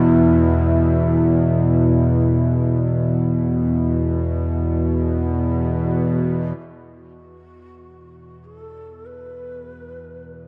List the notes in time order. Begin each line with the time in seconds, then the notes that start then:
Already playing: E2 B2 E3 B3 E4
6.59 E2 B2 G4
6.63 F#4
8.44 A4
9.06 B4